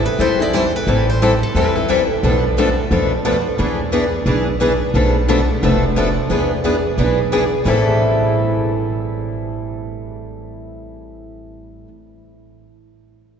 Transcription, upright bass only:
0.19 E2
0.87 A1
1.55 E2
2.23 B1
2.91 F2
3.59 E2
4.26 B1
4.94 B1
5.63 F1
6.30 E2
6.98 B1
7.65 A1

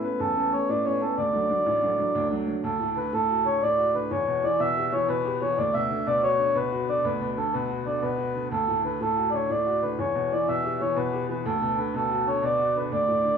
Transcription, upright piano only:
0.03 A3 B3 C#4
0.20 E2
0.36 A3 B3 C#4
0.52 A3 B3 C#4
0.69 A2
0.85 A3 B3 C#4
1.01 A3 B3 C#4
1.18 D2
1.33 F#3 A3 D4
1.50 F#3 A3 D4
1.66 A1
1.82 F#3 A3 D4
1.98 F#3 A3 D4
2.15 D2
2.31 F#3 A3 D4
2.47 F#3 A3 D4
2.64 D2
2.79 A2
2.96 D3
3.13 A2
3.29 F#4
3.46 D3
3.62 A2
3.78 F#4
3.94 D3
4.11 E2
4.27 B2
4.44 E3
4.60 B2
4.77 G4
4.92 E3
5.08 B2
5.25 G4
5.42 E3
5.58 D2
5.74 B2
5.91 D3
6.07 B2
6.22 F#4
6.39 D3
6.55 B2
6.72 F#4
6.88 D3
7.04 D2
7.21 B2
7.37 D3
7.54 B2
7.70 F#4
7.86 D3
8.02 B2
8.18 F#4
8.35 D3
8.51 D2
8.68 A2
8.84 D3
9.01 A2
9.17 F#4
9.33 D3
9.50 A2
9.67 F#4
9.83 D3
9.99 E2
10.15 B2
10.32 E3
10.48 B2
10.64 G4
10.80 E3
10.96 B2
11.13 G4
11.29 E3
11.45 D2
11.62 B2
11.78 D3
11.94 B2
12.11 F#4
12.27 D3
12.43 B2
12.59 F#4
12.76 D3
12.92 D2
13.08 A2
13.25 D3

